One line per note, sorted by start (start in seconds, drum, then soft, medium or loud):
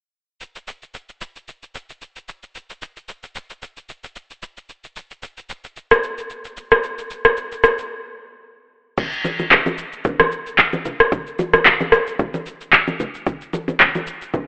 0.41 shaker medium
0.56 shaker medium
0.68 shaker medium
0.82 shaker soft
0.94 shaker medium
1.09 shaker soft
1.21 shaker medium
1.36 shaker medium
1.48 shaker medium
1.63 shaker medium
1.75 shaker medium
1.90 shaker medium
2.02 shaker medium
2.16 shaker medium
2.29 shaker medium
2.43 shaker soft
2.55 shaker medium
2.70 shaker medium
2.82 shaker medium
2.97 shaker soft
3.08 shaker medium
3.23 shaker soft
3.35 shaker medium
3.50 shaker medium
3.62 shaker medium
3.77 shaker medium
3.89 shaker medium
4.04 shaker medium
4.16 shaker medium
4.30 shaker medium
4.43 shaker medium
4.57 shaker soft
4.69 shaker medium
4.84 shaker medium
4.96 shaker medium
5.11 shaker soft
5.23 shaker medium
5.37 shaker soft
5.50 shaker loud
5.64 shaker medium
5.77 shaker medium
5.91 cross-stick medium
5.91 shaker medium
6.03 shaker medium
6.18 shaker medium
6.30 shaker medium
6.45 shaker medium
6.57 shaker medium
6.71 cross-stick medium
6.71 shaker soft
6.84 shaker medium
6.98 shaker medium
7.11 shaker medium
7.25 cross-stick medium
7.25 shaker soft
7.37 shaker medium
7.52 shaker soft
7.64 cross-stick medium
7.64 shaker loud
7.78 shaker medium
8.98 kick loud
8.98 crash medium
8.98 low conga medium
8.98 shaker medium
9.12 shaker medium
9.24 high conga medium
9.24 shaker loud
9.39 high conga medium
9.39 shaker soft
9.51 kick medium
9.51 clap loud
9.51 low conga medium
9.51 shaker medium
9.66 high conga medium
9.66 shaker medium
9.78 shaker loud
9.93 shaker medium
10.05 kick loud
10.05 low conga medium
10.05 shaker medium
10.20 cross-stick loud
10.20 high conga medium
10.20 shaker medium
10.32 shaker medium
10.46 shaker medium
10.58 kick medium
10.58 clap loud
10.58 shaker medium
10.73 high conga medium
10.73 shaker medium
10.85 low conga medium
10.85 shaker medium
11.00 cross-stick medium
11.00 shaker soft
11.12 kick loud
11.12 low conga medium
11.12 shaker medium
11.27 shaker medium
11.39 high conga medium
11.39 shaker medium
11.54 cross-stick medium
11.54 high conga medium
11.54 shaker soft
11.65 kick medium
11.65 clap loud
11.65 low conga medium
11.65 shaker medium
11.80 high conga medium
11.80 shaker medium
11.92 cross-stick loud
11.92 shaker loud
12.07 shaker medium
12.19 kick loud
12.19 low conga medium
12.19 shaker medium
12.34 high conga medium
12.34 shaker medium
12.46 shaker medium
12.61 shaker medium
12.73 kick medium
12.73 clap medium
12.73 shaker medium
12.88 high conga medium
12.88 shaker medium
13.00 low conga medium
13.00 shaker medium
13.15 shaker soft
13.27 kick loud
13.27 low conga medium
13.27 shaker medium
13.41 shaker medium
13.53 high conga medium
13.53 shaker medium
13.68 high conga medium
13.68 shaker soft
13.80 kick medium
13.80 clap medium
13.80 low conga medium
13.80 shaker medium
13.95 high conga medium
13.95 shaker medium
14.07 shaker loud
14.22 shaker medium
14.34 kick loud
14.34 low conga medium
14.34 shaker medium